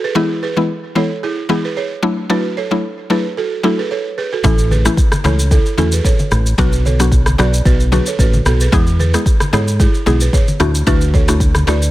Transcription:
0.04 balafon G#4 B4
0.15 synth pluck E3 G#3 B3 E4, balafon E4 G#4
0.43 balafon G#4 B4
0.57 synth pluck E3 G#3 B3 E4
0.95 synth pluck E3 G#3 B3 E4, balafon A4 C#5
1.23 balafon E4 G#4
1.49 synth pluck E3 G#3 B3 E4, balafon E4 G#4
1.65 balafon G#4 B4
1.77 balafon G#4 C#5
2.03 synth pluck F#3 A3 D4 E4
2.30 synth pluck F#3 A3 D4 E4, balafon F#4 B4
2.57 balafon A4 C#5
2.71 synth pluck F#3 A3 D4 E4
3.10 synth pluck F#3 A3 D4 E4, balafon G#4 B4
3.37 balafon F#4 A4
3.63 synth pluck F#3 A3 D4 E4, balafon F#4 A4
3.79 balafon G#4 B4
3.91 balafon A4 C#5
4.18 balafon G#4 B4
4.33 balafon F#4 A4
4.43 fingered electric bass A1, synth pluck E3 A3 C#4 E4, balafon E4 A4, kick, low conga, shaker
4.58 shaker
4.71 balafon G#4 B4, high conga, shaker
4.85 synth pluck E3 A3 C#4 E4, cross-stick, shaker
4.97 kick, shaker
5.12 cross-stick, high conga, shaker
5.24 fingered electric bass C#2, synth pluck E3 A3 C#4 E4, balafon A4 C#5, cross-stick, high conga, shaker
5.39 shaker
5.51 balafon E4 A4, kick, shaker
5.66 shaker
5.78 fingered electric bass E2, synth pluck E3 A3 C#4 E4, balafon F#4 A4, high conga, shaker
5.92 balafon G#4 B4, shaker
6.05 balafon A4 C#5, kick, low conga, shaker
6.19 high conga, shaker
6.31 fingered electric bass A1, cross-stick, low conga, shaker
6.46 shaker
6.58 fingered electric bass B1, synth pluck F#3 B3 D4 F#4, balafon F#4 B4, kick, low conga, shaker
6.73 shaker
6.85 balafon A4 C#5, high conga, shaker
7.00 synth pluck F#3 B3 D4 F#4, cross-stick, shaker
7.12 kick, shaker
7.26 cross-stick, high conga, shaker
7.38 fingered electric bass B1, synth pluck F#3 B3 D4 F#4, balafon B4 D5, cross-stick, high conga, shaker
7.54 shaker
7.65 fingered electric bass B1, balafon F#4 B4, kick, shaker
7.80 shaker
7.92 synth pluck F#3 B3 D4 F#4, balafon G#4 B4, high conga, shaker
8.06 balafon A4 C#5, shaker
8.19 fingered electric bass A1, balafon F#4 B4, kick, low conga, shaker
8.33 high conga, shaker
8.45 fingered electric bass B1, balafon F#4 A4, cross-stick, low conga, shaker
8.61 balafon G#4 B4, shaker
8.72 fingered electric bass E2, synth pluck G#3 B3 E4 G#4, balafon E4 G#4, kick, low conga, shaker
8.87 shaker
8.99 balafon G#4 B4, high conga, shaker
9.14 synth pluck G#3 B3 E4 G#4, cross-stick, shaker
9.26 kick, shaker
9.40 cross-stick, high conga, shaker
9.53 fingered electric bass G#2, synth pluck G#3 B3 E4 G#4, balafon A4 C#5, cross-stick, high conga, shaker
9.68 shaker
9.80 balafon E4 G#4, kick, shaker
9.94 shaker
10.06 fingered electric bass B1, synth pluck G#3 B3 E4 G#4, balafon E4 G#4, high conga, shaker
10.21 balafon G#4 B4, shaker
10.33 balafon G#4 C#5, kick, low conga, shaker
10.48 high conga, shaker
10.60 fingered electric bass D2, synth pluck A3 D4 E4 F#4, cross-stick, low conga, shaker
10.75 shaker
10.86 fingered electric bass D2, synth pluck A3 D4 E4 F#4, balafon F#4 B4, kick, low conga, shaker
11.01 shaker
11.14 balafon A4 C#5, kick, high conga, shaker
11.28 synth pluck A3 D4 E4 F#4, cross-stick, shaker
11.40 kick, shaker
11.55 cross-stick, high conga, shaker
11.67 fingered electric bass D2, synth pluck A3 D4 E4 F#4, balafon B4 D5, cross-stick, high conga, shaker
11.82 shaker

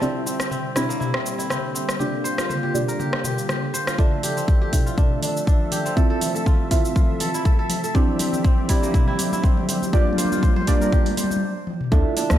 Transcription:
Already playing: kora F4 A4, analog synth pad E5
0.01 analog synth pad D3 G3 C4 G4, synth stab C4 D4 E4 G4 D5, kora C4, mid tom, cabasa
0.26 kora C4, cabasa
0.40 cross-stick, cabasa
0.51 kora C4, mid tom, cabasa
0.76 synth stab C4 D4 E4 G4 D5, kora E4, cross-stick, mid tom, cabasa
0.89 kora A#3, cabasa
1.00 kora E4, mid tom, cabasa
1.14 kora C4, cross-stick
1.26 cabasa
1.38 kora E4, cabasa
1.50 kora C4, cross-stick, mid tom, cabasa
1.75 kora C4, cabasa
1.89 cross-stick, cabasa
1.99 synth stab A#3 D4 F4 G4 D5, analog synth pad A#3 F4, kora G4, mid tom, cabasa
2.24 kora C5, cabasa
2.38 kora F4, cross-stick, cabasa
2.49 kora C5, mid tom, cabasa
2.63 kora G4
2.74 synth stab A#3 D4 F4 G4 D5, mid tom, cabasa
2.88 kora A#4, cabasa
2.99 kora G4, mid tom, cabasa
3.13 cross-stick
3.24 kora G4, mid tom, cabasa
3.38 cabasa
3.49 kora G4, cross-stick, mid tom, cabasa
3.74 kora C5, cabasa
3.87 kora F4, cross-stick, cabasa
3.98 analog synth pad F3 A3 A4 E5, synth stab D4 E4 F4 A4 E5, kora D4, kick, mid tom, cabasa
4.23 kora G4, open hi-hat, mid tom, cabasa
4.37 kora C4, cabasa
4.48 kora G4, kick, mid tom, cabasa
4.61 kora G4
4.73 synth stab D4 E4 F4 A4 E5, kick, open hi-hat, mid tom, cabasa
4.86 kora F4, cabasa
4.97 kora D4, kick, mid tom, cabasa
5.22 kora D4, open hi-hat, mid tom, cabasa
5.37 cabasa
5.47 kora D4, kick, mid tom, cabasa
5.72 kora G4, open hi-hat, mid tom, cabasa
5.86 kora C4, cabasa
5.96 analog synth pad C3, synth stab C4 E4 F4 A4 E5, kora A4, kick, mid tom, cabasa
6.10 kora A4
6.21 open hi-hat, mid tom, cabasa
6.35 kora A4, cabasa
6.46 kora F4, kick, mid tom, cabasa
6.71 synth stab C4 E4 F4 A4 E5, kora F4, kick, open hi-hat, mid tom, cabasa
6.85 cabasa
6.96 kora F4, kick, mid tom, cabasa
7.20 kora A4, open hi-hat, mid tom, cabasa
7.34 kora E4, cabasa
7.45 kora A4, kick, mid tom, cabasa
7.59 kora A4
7.70 open hi-hat, mid tom, cabasa
7.84 kora A4, cabasa
7.94 analog synth pad D3 G3 C4 G4, synth stab C4 D4 E4 G4 D5, kora C4, kick, mid tom, cabasa
8.08 mid tom
8.19 kora C4, open hi-hat, mid tom, cabasa
8.33 mid tom, cabasa
8.44 kora C4, kick, mid tom, cabasa
8.58 mid tom
8.69 synth stab C4 D4 E4 G4 D5, kora E4, kick, open hi-hat, mid tom, cabasa
8.83 kora A#3, mid tom, cabasa
8.94 kora E4, kick, mid tom, cabasa
9.08 kora E4, mid tom
9.19 open hi-hat, mid tom, cabasa
9.32 kora E4, mid tom, cabasa
9.44 kora C4, kick, mid tom, cabasa
9.57 mid tom
9.69 kora C4, open hi-hat, mid tom, cabasa
9.82 mid tom, cabasa
9.93 synth stab A#3 D4 F4 G4 D5, analog synth pad A#3 F4, kora G4, kick, mid tom, cabasa
10.00 mid tom
10.07 mid tom
10.13 mid tom
10.18 kora C5, open hi-hat, mid tom, cabasa
10.25 mid tom
10.32 kora F4, mid tom, cabasa
10.37 mid tom
10.43 kora C5, kick, mid tom, cabasa
10.50 mid tom
10.56 kora C5, mid tom
10.62 mid tom
10.67 synth stab A#3 D4 F4 G4 D5, kick, open hi-hat, mid tom, cabasa
10.74 mid tom
10.81 kora A#4, mid tom, cabasa
10.87 mid tom
10.93 kora G4, kick, mid tom, cabasa
10.99 mid tom
11.06 open hi-hat, mid tom
11.12 mid tom
11.17 kora C5, open hi-hat, mid tom, cabasa
11.24 mid tom
11.31 mid tom, cabasa
11.36 mid tom
11.67 high tom
11.81 mid tom
11.92 sub bass D2, analog synth pad D3 F3 A3 E5, kora D4, synth stab D4 E4 F4 A4 E5, kick, muted conga, high conga, cabasa
12.17 kora D4, open hi-hat, muted conga, cabasa
12.30 sub bass D2, cross-stick, high conga, low conga, cabasa

